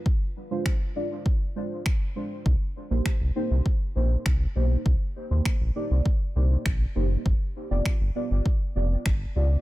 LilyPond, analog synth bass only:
\new Staff \with { instrumentName = "Analog synth bass" } { \clef bass \time 4/4 \key c \minor \tempo 4 = 100 r1 | c,16 r8 bes,,16 r16 c,16 r16 c,16 r8 bes,,8 c,8 b,,8 | c,16 r8 ees,16 r16 bes,,16 r16 c,16 r8 c,8 bes,,8 fis,,8 | g,,16 r8 f,,16 r16 g,,16 r16 g,,16 r8 f,,8 g,,8 des,8 | }